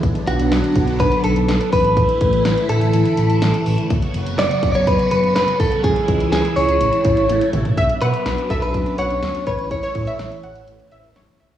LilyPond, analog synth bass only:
\new Staff \with { instrumentName = "Analog synth bass" } { \clef bass \time 4/4 \key b \minor \tempo 4 = 124 b,,16 r16 b,,16 b,,16 b,,16 r16 b,,16 b,,16 b,,16 r16 b,,16 b,,16 b,,16 r16 a,,8~ | a,,16 r16 a,,16 a,,16 a,,16 r16 a,,16 a,,16 a,,16 r16 a,,16 a,,16 a,,16 r16 a,,16 r16 | fis,,16 r16 fis,,16 fis,,16 fis,,16 r16 fis,,16 fis,,16 fis,,16 r16 fis,,16 fis,,16 fis,,16 r16 fis,,16 r16 | cis,16 r16 cis,16 cis,16 cis,16 r16 cis,16 cis,16 a,,16 r16 a,,16 a,,16 a,,16 r16 a,,16 r16 |
b,,16 r16 b,16 r16 b,,16 r16 b,,16 b,,16 b,,16 r16 b,,16 b,,16 d,16 r16 a,,8~ | a,,16 r16 a,16 r16 a,,16 r16 a,,16 a,,16 a,,16 r16 a,,16 a,,16 a,,16 r16 cis,16 r16 | }